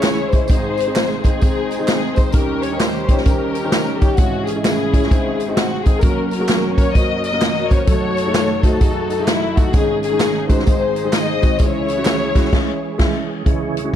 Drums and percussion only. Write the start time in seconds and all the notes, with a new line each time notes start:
0.03 snare, clap, closed hi-hat, tambourine
0.32 kick, closed hi-hat, tambourine
0.48 kick, closed hi-hat, tambourine
0.77 closed hi-hat, tambourine
0.95 snare, clap, closed hi-hat, tambourine
1.24 kick, closed hi-hat, tambourine
1.41 kick, closed hi-hat, tambourine
1.71 closed hi-hat, tambourine
1.88 snare, clap, closed hi-hat, tambourine
2.16 kick, closed hi-hat, tambourine
2.32 kick, closed hi-hat, tambourine
2.62 closed hi-hat, tambourine
2.80 snare, clap, closed hi-hat, tambourine
3.09 kick, closed hi-hat, tambourine
3.17 snare
3.25 kick, closed hi-hat, tambourine
3.55 closed hi-hat, tambourine
3.72 snare, clap, closed hi-hat, tambourine
4.02 kick, closed hi-hat, tambourine
4.17 kick, closed hi-hat, tambourine
4.47 closed hi-hat, tambourine
4.65 snare, clap, closed hi-hat, tambourine
4.94 kick, closed hi-hat, tambourine
5.03 snare
5.11 kick, closed hi-hat, tambourine
5.40 closed hi-hat, tambourine
5.57 snare, clap, closed hi-hat, tambourine
5.86 kick, closed hi-hat, tambourine
6.01 kick, closed hi-hat, tambourine
6.31 closed hi-hat, tambourine
6.48 snare, clap, closed hi-hat, tambourine
6.78 kick, closed hi-hat, tambourine
6.95 kick, closed hi-hat, tambourine
7.24 closed hi-hat, tambourine
7.41 snare, clap, closed hi-hat, tambourine
7.71 kick, closed hi-hat, tambourine
7.87 kick, closed hi-hat, tambourine
8.17 closed hi-hat, tambourine
8.34 snare, clap, closed hi-hat, tambourine
8.63 kick, closed hi-hat, tambourine
8.81 kick, closed hi-hat, tambourine
9.10 closed hi-hat, tambourine
9.27 snare, clap, closed hi-hat, tambourine
9.57 kick, closed hi-hat, tambourine
9.73 kick, closed hi-hat, tambourine
10.03 closed hi-hat, tambourine
10.20 snare, clap, closed hi-hat, tambourine
10.49 kick, closed hi-hat, tambourine
10.59 snare
10.67 kick, closed hi-hat, tambourine
10.96 closed hi-hat, tambourine
11.13 snare, clap, closed hi-hat, tambourine
11.42 kick, closed hi-hat, tambourine
11.59 kick, closed hi-hat, tambourine
11.88 closed hi-hat, tambourine
12.05 snare, clap, closed hi-hat, tambourine
12.35 kick, snare, closed hi-hat, tambourine
12.44 snare
12.53 kick, snare, crash
12.99 kick, snare, crash
13.46 kick, closed hi-hat
13.77 closed hi-hat